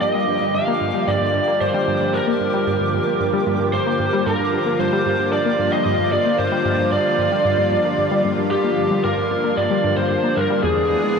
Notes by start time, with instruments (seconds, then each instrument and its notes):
Already playing: analog synth pad D3 F3 G3 A#3 G4, synth texture D6
0.01 synth arpeggio sound G2, lead electric guitar D#5
0.15 synth arpeggio sound G3
0.28 synth arpeggio sound G2
0.41 synth arpeggio sound G2
0.54 synth arpeggio sound G2, lead electric guitar F5
0.68 synth arpeggio sound A#3
0.81 synth arpeggio sound G2
0.94 synth arpeggio sound G3
1.08 synth arpeggio sound G2, lead electric guitar D5
1.21 synth arpeggio sound G2
1.34 synth arpeggio sound G2
1.48 synth arpeggio sound A#3
1.61 synth arpeggio sound G2, lead electric guitar C5
1.74 synth arpeggio sound G3
1.88 synth arpeggio sound G2
2.01 synth arpeggio sound G2
2.14 synth arpeggio sound G2, lead electric guitar A#4
2.27 synth arpeggio sound A#3
2.41 synth arpeggio sound G2
2.54 synth arpeggio sound G3
2.67 synth arpeggio sound G2
2.80 synth arpeggio sound G2
2.94 synth arpeggio sound G2
3.07 synth arpeggio sound A#3
3.20 synth arpeggio sound G2
3.33 synth arpeggio sound G3
3.47 synth arpeggio sound G2
3.60 synth arpeggio sound G2
3.73 synth arpeggio sound G2, lead electric guitar C5
3.87 synth arpeggio sound A#3
4.00 synth arpeggio sound G2
4.13 synth arpeggio sound G3
4.26 synth arpeggio sound G2, analog synth pad F4, lead electric guitar A#4
4.40 synth arpeggio sound G2
4.53 synth arpeggio sound G2
4.66 synth arpeggio sound A#3
4.79 synth arpeggio sound G2, lead electric guitar C5
4.93 synth arpeggio sound G3
5.06 synth arpeggio sound G2
5.19 synth arpeggio sound G2
5.33 synth arpeggio sound G2, lead electric guitar D5
5.46 synth arpeggio sound A#3
5.59 synth arpeggio sound G2
5.72 synth arpeggio sound G3, lead electric guitar D#5
5.86 synth arpeggio sound G2
5.99 synth arpeggio sound G2
6.12 synth arpeggio sound G2, lead electric guitar D5
6.26 synth arpeggio sound A#3
6.39 synth arpeggio sound G2, lead electric guitar C5
6.52 synth arpeggio sound G3
6.65 synth arpeggio sound G2
6.79 synth arpeggio sound G2
6.92 synth arpeggio sound G2, lead electric guitar D5
7.05 synth arpeggio sound A#3
7.19 synth arpeggio sound G2
7.32 synth arpeggio sound G3
7.45 synth arpeggio sound G2
7.58 synth arpeggio sound G2
7.72 synth arpeggio sound G2
7.85 synth arpeggio sound A#3
7.98 synth arpeggio sound G2
8.11 synth arpeggio sound G3
8.25 synth arpeggio sound G2
8.38 synth arpeggio sound G2
8.51 synth arpeggio sound G2, lead electric guitar G4
8.64 synth arpeggio sound A#3
8.78 synth arpeggio sound G2
8.91 synth arpeggio sound G3
9.04 synth arpeggio sound G2, lead electric guitar A#4
9.18 synth arpeggio sound G2
9.31 synth arpeggio sound G2
9.44 synth arpeggio sound A#3
9.57 synth arpeggio sound G2, lead electric guitar D5
9.71 synth arpeggio sound G3
9.84 synth arpeggio sound G2
9.97 synth arpeggio sound G2, lead electric guitar C5
10.11 synth arpeggio sound G2
10.24 synth arpeggio sound A#3
10.37 synth arpeggio sound G2, lead electric guitar A#4
10.50 synth arpeggio sound G3
10.63 synth arpeggio sound E2, analog synth pad E3 G#3 B3 D4 G#4, lead electric guitar G#4
10.77 synth arpeggio sound E2
10.90 synth arpeggio sound E2
11.03 synth arpeggio sound G#3